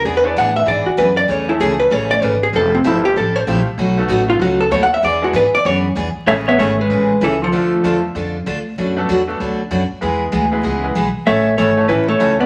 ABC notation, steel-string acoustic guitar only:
X:1
M:4/4
L:1/8
Q:"Swing" 1/4=193
K:A
V:1 name="Steel-string acoustic guitar"
[E,B,DG] z [E,B,DG] z [E,B,DG] z [E,B,DG] z | [C,E,A,CG] z [C,E,A,CG] z [C,E,A,CG] z [C,E,A,CG] z | [=F,=CEA] z [F,CEA] z [F,CEA] z [F,CEA] z | [B,,F,A,^DF] z [B,,F,A,DF] z [B,,F,A,DF] z [B,,F,A,DF] z |
[E,B,DG] z [E,B,DG] z [E,B,DG] z [E,B,DG] z | [C,E,A,CG] z [C,E,A,CG] z [C,E,A,CG] z [C,E,A,CG] z | [D,A,D=FA] z [D,A,DFA] z [D,A,DFA] z [D,A,DFA] z | [B,,F,A,DF] z [B,,F,A,DF] z [B,,F,A,DF] z [B,,F,A,DF] z |
[E,G,B,EG] z [E,G,B,EG] z [E,G,B,EG] z [E,G,B,EG] z | [C,E,A,CA] z [C,E,A,CA] z [C,E,A,CA] z [C,E,A,CA] z |]